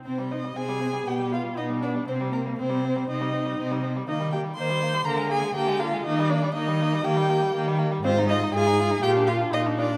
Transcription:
<<
  \new Staff \with { instrumentName = "Violin" } { \time 4/4 \key c \minor \tempo 4 = 120 c''8 ees''8 aes''4 g''8 f''8 ees''8 d''8 | c''8 bes'8 c''4 ees''4. r8 | ees''8 g''8 c'''4 bes''8 aes''8 g''8 f''8 | ees''8 d''8 ees''4 g''4. r8 |
\key f \dorian c''8 ees''8 aes''4 g''8 f''8 ees''8 d''8 | }
  \new Staff \with { instrumentName = "Viola" } { \time 4/4 \key c \minor c'8 ees'8 aes'4 g'8 f'8 ees'8 d'8 | c'8 bes8 c'4 ees'4. r8 | ees'8 g'8 c''4 bes'8 aes'8 g'8 f'8 | ees'8 d'8 ees'4 g'4. r8 |
\key f \dorian c'8 ees'8 aes'4 g'8 f'8 ees'8 d'8 | }
  \new Staff \with { instrumentName = "Violin" } { \time 4/4 \key c \minor c'16 g16 c'16 g16 c'16 g16 c'16 g16 b16 g16 b16 g16 b16 g16 b16 g16 | c'16 g16 c'16 g16 c'16 g16 c'16 g16 c'16 g16 c'16 g16 c'16 g16 c'16 g16 | bes16 g16 bes16 g16 bes16 g16 bes16 g16 bes16 aes16 bes16 aes16 bes16 aes16 bes16 aes16 | bes16 g16 bes16 g16 bes16 g16 bes16 g16 bes16 g16 bes16 g16 bes16 g16 bes16 g16 |
\key f \dorian f'16 ees'16 f'16 ees'16 f'16 ees'16 f'16 ees'16 f'16 d'16 f'16 d'16 f'16 d'16 f'16 d'16 | }
  \new Staff \with { instrumentName = "Cello" } { \clef bass \time 4/4 \key c \minor c4 c4 b,4 b,4 | c4 c4 c4 c4 | ees4 ees4 d4 d4 | ees4 ees4 ees4 ees4 |
\key f \dorian aes,4 aes,4 bes,4 bes,4 | }
>>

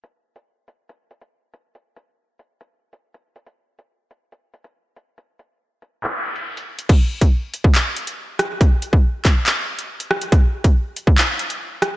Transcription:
\new DrumStaff \with { instrumentName = "Drums" } \drummode { \time 4/4 \tempo 4 = 140 hh8. hh16 r8 hh8 hh8 hh16 hh16 r8 hh8 | hh8 hh8 r8 hh8 hh8. hh16 r16 hh8 hh16 | hh8. hh16 r8 hh8 hh8 hh16 hh16 r8 hh8 | hh8 hh8 r8 hh8 <hc hh>8. hh16 r16 hh8 hh16 |
<cymc hh bd>8. <hh bd>16 r8 hh16 bd16 <hc hh>8 hh16 hh16 r8 <hh ss>8 | <hh bd>8 hh16 bd16 r8 <hc hh bd>8 <hc hh>8. hh16 r16 hh16 ss16 hh16 | <hh bd>8. <hh bd>16 r8 hh16 bd16 <hc hh>8 hh16 hh16 r8 <hh ss>8 | }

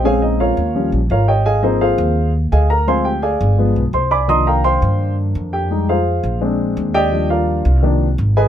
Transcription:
<<
  \new Staff \with { instrumentName = "Upright piano" } { \time 4/4 \key ees \major \tempo 4 = 169 <aes' des'' f'' aes''>8 <ees' ees''>8 <f' bes' des'' f''>4. r8 <f' bes' des'' f''>8 <g' des'' ees'' g''>8 | <aes' ees'' f'' aes''>8 <ees' aes' c'' ees''>8 <f' aes' c'' f''>4. r8 <aes' ees'' f'' aes''>8 <bes' bes''>8 | <c'' f'' aes'' c'''>8 <g' g''>8 <aes' d'' f'' aes''>4. r8 <c'' c'''>8 <d'' aes'' b'' d'''>8 | <ees'' bes'' c''' ees'''>8 <bes' f'' g'' bes''>8 <c'' f'' g'' c'''>4. r4 <g' g''>8~ |
<g' g''>8 <f' aes' c'' f''>4. r4. <g' d'' ees'' g''>8~ | <g' d'' ees'' g''>8 <f' bes' d'' f''>4. r4. <aes' ces'' ees'' aes''>8 | }
  \new Staff \with { instrumentName = "Upright piano" } { \clef bass \time 4/4 \key ees \major <des aes c'>4. r8 <f g des'>8 r4. | r8 <f bes c'>4. r2 | <f aes c'>8 r4. <f aes b>8 r4. | <ees f bes d'>1 |
<g aes ees'>8 r4. <aes c' d'>2 | <f g d'>4. r8 <ees f bes d'>8 r4. | }
  \new Staff \with { instrumentName = "Upright bass" } { \clef bass \time 4/4 \key ees \major bes,,4. ees,4 bes,,8 aes,,4~ | aes,,4. ees,4. d,4~ | d,4. g,,4 b,,8 c,4~ | c,4. g,4. f,4~ |
f,4. bes,,4. ees,4~ | ees,4. c,4. aes,,4 | }
>>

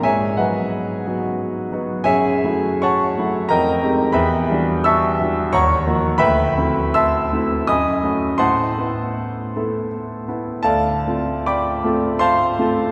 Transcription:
\new Staff \with { instrumentName = "Grand piano" } { \time 3/4 \key gis \minor \tempo 4 = 83 << { <gis' cis'' e'' gis''>8 <fis' b' dis'' fis''>2 r8 | <gis' cis'' e'' gis''>4 <cis'' fis'' a'' cis'''>4 <ais' ees'' g'' ais''>4 | <b' e'' g'' b''>4 <e'' a'' cis''' e'''>4 <cis'' fis'' ais'' cis'''>4 | \key d \mixolydian <b' e'' g'' b''>4 <e'' a'' c''' e'''>4 <dis'' aes'' b'' dis'''>4 |
<c'' fis'' a'' c'''>2 r4 | <a' d'' f'' a''>4 <d'' g'' b'' d'''>4 <c'' f'' a'' c'''>4 | } \\ { gis,8 <fis b dis'>4 <fis b dis' fis'>4 <fis b dis' fis'>8 | fis,8 <fis a e' fis'>4 <fis a e' fis'>8 f,8 <aes c' ees' g'>8 | e,8 <e g d' fis'>4 <e g d' fis'>8 dis,8 <eis ais dis' fis'>8 | d,8 <a c' e' fis'>4 <a c' e' fis'>8 fis,8 <a cis' fis' a'>8 |
a,8 <a b e' a'>4 <a b e' a'>4 <a b e' a'>8 | d,8 <a c' f' a'>4 <a c' f' a'>4 <a c' f' a'>8 | } >> }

